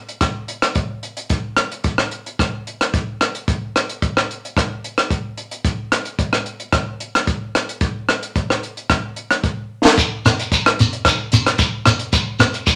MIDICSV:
0, 0, Header, 1, 3, 480
1, 0, Start_track
1, 0, Tempo, 541516
1, 1147, Time_signature, 4, 2, 24, 8
1, 11306, End_track
2, 0, Start_track
2, 0, Title_t, "Shekere"
2, 8850, Note_on_c, 9, 82, 72
2, 8938, Note_off_c, 9, 82, 0
2, 9091, Note_on_c, 9, 82, 103
2, 9179, Note_off_c, 9, 82, 0
2, 9219, Note_on_c, 9, 82, 27
2, 9308, Note_off_c, 9, 82, 0
2, 9333, Note_on_c, 9, 82, 71
2, 9422, Note_off_c, 9, 82, 0
2, 9575, Note_on_c, 9, 82, 90
2, 9664, Note_off_c, 9, 82, 0
2, 9818, Note_on_c, 9, 82, 75
2, 9907, Note_off_c, 9, 82, 0
2, 10044, Note_on_c, 9, 82, 98
2, 10133, Note_off_c, 9, 82, 0
2, 10166, Note_on_c, 9, 82, 28
2, 10255, Note_off_c, 9, 82, 0
2, 10272, Note_on_c, 9, 82, 77
2, 10361, Note_off_c, 9, 82, 0
2, 10518, Note_on_c, 9, 82, 96
2, 10606, Note_off_c, 9, 82, 0
2, 10752, Note_on_c, 9, 82, 79
2, 10840, Note_off_c, 9, 82, 0
2, 10987, Note_on_c, 9, 82, 89
2, 11076, Note_off_c, 9, 82, 0
2, 11114, Note_on_c, 9, 82, 25
2, 11203, Note_off_c, 9, 82, 0
2, 11226, Note_on_c, 9, 82, 72
2, 11306, Note_off_c, 9, 82, 0
2, 11306, End_track
3, 0, Start_track
3, 0, Title_t, "Drums"
3, 76, Note_on_c, 9, 42, 38
3, 165, Note_off_c, 9, 42, 0
3, 184, Note_on_c, 9, 37, 58
3, 184, Note_on_c, 9, 42, 43
3, 186, Note_on_c, 9, 36, 70
3, 273, Note_off_c, 9, 37, 0
3, 273, Note_off_c, 9, 42, 0
3, 275, Note_off_c, 9, 36, 0
3, 428, Note_on_c, 9, 42, 46
3, 516, Note_off_c, 9, 42, 0
3, 552, Note_on_c, 9, 37, 58
3, 552, Note_on_c, 9, 42, 43
3, 640, Note_off_c, 9, 37, 0
3, 640, Note_off_c, 9, 42, 0
3, 664, Note_on_c, 9, 42, 42
3, 669, Note_on_c, 9, 36, 75
3, 753, Note_off_c, 9, 42, 0
3, 758, Note_off_c, 9, 36, 0
3, 912, Note_on_c, 9, 42, 46
3, 1000, Note_off_c, 9, 42, 0
3, 1035, Note_on_c, 9, 42, 49
3, 1124, Note_off_c, 9, 42, 0
3, 1148, Note_on_c, 9, 42, 48
3, 1153, Note_on_c, 9, 36, 82
3, 1236, Note_off_c, 9, 42, 0
3, 1242, Note_off_c, 9, 36, 0
3, 1388, Note_on_c, 9, 37, 63
3, 1388, Note_on_c, 9, 42, 44
3, 1476, Note_off_c, 9, 37, 0
3, 1476, Note_off_c, 9, 42, 0
3, 1521, Note_on_c, 9, 42, 47
3, 1610, Note_off_c, 9, 42, 0
3, 1630, Note_on_c, 9, 42, 43
3, 1634, Note_on_c, 9, 36, 75
3, 1718, Note_off_c, 9, 42, 0
3, 1723, Note_off_c, 9, 36, 0
3, 1756, Note_on_c, 9, 37, 60
3, 1845, Note_off_c, 9, 37, 0
3, 1873, Note_on_c, 9, 42, 42
3, 1962, Note_off_c, 9, 42, 0
3, 2006, Note_on_c, 9, 42, 44
3, 2095, Note_off_c, 9, 42, 0
3, 2121, Note_on_c, 9, 36, 74
3, 2125, Note_on_c, 9, 37, 57
3, 2125, Note_on_c, 9, 42, 43
3, 2210, Note_off_c, 9, 36, 0
3, 2214, Note_off_c, 9, 37, 0
3, 2214, Note_off_c, 9, 42, 0
3, 2367, Note_on_c, 9, 42, 44
3, 2456, Note_off_c, 9, 42, 0
3, 2491, Note_on_c, 9, 37, 58
3, 2491, Note_on_c, 9, 42, 44
3, 2579, Note_off_c, 9, 37, 0
3, 2579, Note_off_c, 9, 42, 0
3, 2603, Note_on_c, 9, 36, 79
3, 2605, Note_on_c, 9, 42, 40
3, 2692, Note_off_c, 9, 36, 0
3, 2694, Note_off_c, 9, 42, 0
3, 2844, Note_on_c, 9, 37, 62
3, 2844, Note_on_c, 9, 42, 42
3, 2933, Note_off_c, 9, 37, 0
3, 2933, Note_off_c, 9, 42, 0
3, 2968, Note_on_c, 9, 42, 45
3, 3057, Note_off_c, 9, 42, 0
3, 3084, Note_on_c, 9, 36, 83
3, 3087, Note_on_c, 9, 42, 44
3, 3172, Note_off_c, 9, 36, 0
3, 3175, Note_off_c, 9, 42, 0
3, 3331, Note_on_c, 9, 37, 62
3, 3331, Note_on_c, 9, 42, 43
3, 3420, Note_off_c, 9, 37, 0
3, 3420, Note_off_c, 9, 42, 0
3, 3452, Note_on_c, 9, 42, 42
3, 3540, Note_off_c, 9, 42, 0
3, 3566, Note_on_c, 9, 36, 73
3, 3568, Note_on_c, 9, 42, 42
3, 3655, Note_off_c, 9, 36, 0
3, 3656, Note_off_c, 9, 42, 0
3, 3695, Note_on_c, 9, 37, 65
3, 3784, Note_off_c, 9, 37, 0
3, 3819, Note_on_c, 9, 42, 38
3, 3907, Note_off_c, 9, 42, 0
3, 3944, Note_on_c, 9, 42, 43
3, 4033, Note_off_c, 9, 42, 0
3, 4047, Note_on_c, 9, 36, 78
3, 4055, Note_on_c, 9, 37, 56
3, 4055, Note_on_c, 9, 42, 43
3, 4136, Note_off_c, 9, 36, 0
3, 4144, Note_off_c, 9, 37, 0
3, 4144, Note_off_c, 9, 42, 0
3, 4294, Note_on_c, 9, 42, 44
3, 4382, Note_off_c, 9, 42, 0
3, 4413, Note_on_c, 9, 37, 57
3, 4413, Note_on_c, 9, 42, 43
3, 4501, Note_off_c, 9, 37, 0
3, 4501, Note_off_c, 9, 42, 0
3, 4525, Note_on_c, 9, 36, 71
3, 4530, Note_on_c, 9, 42, 43
3, 4614, Note_off_c, 9, 36, 0
3, 4619, Note_off_c, 9, 42, 0
3, 4765, Note_on_c, 9, 42, 45
3, 4853, Note_off_c, 9, 42, 0
3, 4888, Note_on_c, 9, 42, 47
3, 4976, Note_off_c, 9, 42, 0
3, 5004, Note_on_c, 9, 36, 82
3, 5009, Note_on_c, 9, 42, 48
3, 5093, Note_off_c, 9, 36, 0
3, 5098, Note_off_c, 9, 42, 0
3, 5247, Note_on_c, 9, 37, 64
3, 5247, Note_on_c, 9, 42, 48
3, 5335, Note_off_c, 9, 37, 0
3, 5335, Note_off_c, 9, 42, 0
3, 5365, Note_on_c, 9, 42, 43
3, 5454, Note_off_c, 9, 42, 0
3, 5484, Note_on_c, 9, 36, 71
3, 5485, Note_on_c, 9, 42, 46
3, 5573, Note_off_c, 9, 36, 0
3, 5573, Note_off_c, 9, 42, 0
3, 5609, Note_on_c, 9, 37, 61
3, 5698, Note_off_c, 9, 37, 0
3, 5725, Note_on_c, 9, 42, 42
3, 5814, Note_off_c, 9, 42, 0
3, 5848, Note_on_c, 9, 42, 44
3, 5937, Note_off_c, 9, 42, 0
3, 5961, Note_on_c, 9, 37, 59
3, 5961, Note_on_c, 9, 42, 45
3, 5963, Note_on_c, 9, 36, 78
3, 6050, Note_off_c, 9, 37, 0
3, 6050, Note_off_c, 9, 42, 0
3, 6052, Note_off_c, 9, 36, 0
3, 6208, Note_on_c, 9, 42, 51
3, 6296, Note_off_c, 9, 42, 0
3, 6339, Note_on_c, 9, 37, 61
3, 6339, Note_on_c, 9, 42, 49
3, 6428, Note_off_c, 9, 37, 0
3, 6428, Note_off_c, 9, 42, 0
3, 6448, Note_on_c, 9, 36, 74
3, 6448, Note_on_c, 9, 42, 44
3, 6536, Note_off_c, 9, 36, 0
3, 6537, Note_off_c, 9, 42, 0
3, 6693, Note_on_c, 9, 37, 61
3, 6693, Note_on_c, 9, 42, 45
3, 6782, Note_off_c, 9, 37, 0
3, 6782, Note_off_c, 9, 42, 0
3, 6817, Note_on_c, 9, 42, 48
3, 6906, Note_off_c, 9, 42, 0
3, 6921, Note_on_c, 9, 42, 44
3, 6923, Note_on_c, 9, 36, 80
3, 7010, Note_off_c, 9, 42, 0
3, 7012, Note_off_c, 9, 36, 0
3, 7167, Note_on_c, 9, 37, 62
3, 7167, Note_on_c, 9, 42, 42
3, 7256, Note_off_c, 9, 37, 0
3, 7256, Note_off_c, 9, 42, 0
3, 7292, Note_on_c, 9, 42, 44
3, 7381, Note_off_c, 9, 42, 0
3, 7407, Note_on_c, 9, 36, 75
3, 7409, Note_on_c, 9, 42, 39
3, 7496, Note_off_c, 9, 36, 0
3, 7497, Note_off_c, 9, 42, 0
3, 7537, Note_on_c, 9, 37, 63
3, 7625, Note_off_c, 9, 37, 0
3, 7651, Note_on_c, 9, 42, 39
3, 7740, Note_off_c, 9, 42, 0
3, 7775, Note_on_c, 9, 42, 39
3, 7864, Note_off_c, 9, 42, 0
3, 7885, Note_on_c, 9, 37, 64
3, 7885, Note_on_c, 9, 42, 42
3, 7886, Note_on_c, 9, 36, 74
3, 7974, Note_off_c, 9, 37, 0
3, 7974, Note_off_c, 9, 42, 0
3, 7975, Note_off_c, 9, 36, 0
3, 8123, Note_on_c, 9, 42, 42
3, 8211, Note_off_c, 9, 42, 0
3, 8249, Note_on_c, 9, 37, 58
3, 8249, Note_on_c, 9, 42, 40
3, 8337, Note_off_c, 9, 37, 0
3, 8337, Note_off_c, 9, 42, 0
3, 8363, Note_on_c, 9, 42, 40
3, 8364, Note_on_c, 9, 36, 76
3, 8452, Note_off_c, 9, 42, 0
3, 8453, Note_off_c, 9, 36, 0
3, 8731, Note_on_c, 9, 38, 61
3, 8820, Note_off_c, 9, 38, 0
3, 8843, Note_on_c, 9, 36, 92
3, 8846, Note_on_c, 9, 42, 53
3, 8932, Note_off_c, 9, 36, 0
3, 8935, Note_off_c, 9, 42, 0
3, 9093, Note_on_c, 9, 37, 73
3, 9093, Note_on_c, 9, 42, 50
3, 9181, Note_off_c, 9, 37, 0
3, 9181, Note_off_c, 9, 42, 0
3, 9214, Note_on_c, 9, 42, 52
3, 9302, Note_off_c, 9, 42, 0
3, 9322, Note_on_c, 9, 36, 77
3, 9324, Note_on_c, 9, 42, 50
3, 9411, Note_off_c, 9, 36, 0
3, 9413, Note_off_c, 9, 42, 0
3, 9451, Note_on_c, 9, 37, 71
3, 9540, Note_off_c, 9, 37, 0
3, 9565, Note_on_c, 9, 42, 48
3, 9654, Note_off_c, 9, 42, 0
3, 9687, Note_on_c, 9, 42, 45
3, 9776, Note_off_c, 9, 42, 0
3, 9794, Note_on_c, 9, 37, 66
3, 9794, Note_on_c, 9, 42, 50
3, 9796, Note_on_c, 9, 36, 83
3, 9882, Note_off_c, 9, 37, 0
3, 9882, Note_off_c, 9, 42, 0
3, 9885, Note_off_c, 9, 36, 0
3, 10032, Note_on_c, 9, 42, 51
3, 10121, Note_off_c, 9, 42, 0
3, 10163, Note_on_c, 9, 37, 67
3, 10163, Note_on_c, 9, 42, 52
3, 10251, Note_off_c, 9, 37, 0
3, 10251, Note_off_c, 9, 42, 0
3, 10268, Note_on_c, 9, 42, 45
3, 10273, Note_on_c, 9, 36, 89
3, 10356, Note_off_c, 9, 42, 0
3, 10361, Note_off_c, 9, 36, 0
3, 10509, Note_on_c, 9, 37, 68
3, 10509, Note_on_c, 9, 42, 48
3, 10597, Note_off_c, 9, 37, 0
3, 10597, Note_off_c, 9, 42, 0
3, 10632, Note_on_c, 9, 42, 52
3, 10720, Note_off_c, 9, 42, 0
3, 10748, Note_on_c, 9, 42, 52
3, 10751, Note_on_c, 9, 36, 88
3, 10837, Note_off_c, 9, 42, 0
3, 10839, Note_off_c, 9, 36, 0
3, 10993, Note_on_c, 9, 37, 72
3, 10993, Note_on_c, 9, 42, 49
3, 11082, Note_off_c, 9, 37, 0
3, 11082, Note_off_c, 9, 42, 0
3, 11115, Note_on_c, 9, 42, 49
3, 11204, Note_off_c, 9, 42, 0
3, 11230, Note_on_c, 9, 36, 82
3, 11230, Note_on_c, 9, 42, 43
3, 11306, Note_off_c, 9, 36, 0
3, 11306, Note_off_c, 9, 42, 0
3, 11306, End_track
0, 0, End_of_file